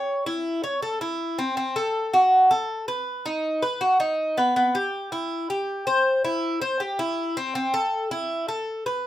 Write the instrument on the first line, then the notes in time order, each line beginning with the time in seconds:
cuban tres
Already playing: C#5
0.26 E4
0.64 C#5
0.82 A4
1.01 E4
1.39 C4
1.57 C4
1.76 A4
2.13 F#4
2.51 A4
2.88 B4
3.26 D#4
3.62 B4
3.81 F#4
4.00 D#4
4.38 B3
4.56 B3
4.75 G4
5.12 E4
5.50 G4
5.87 C5
6.25 E4
6.62 C5
6.80 G4
6.99 E4
7.37 C4
7.55 C4
7.74 A4
8.11 E4
8.48 A4
8.86 B4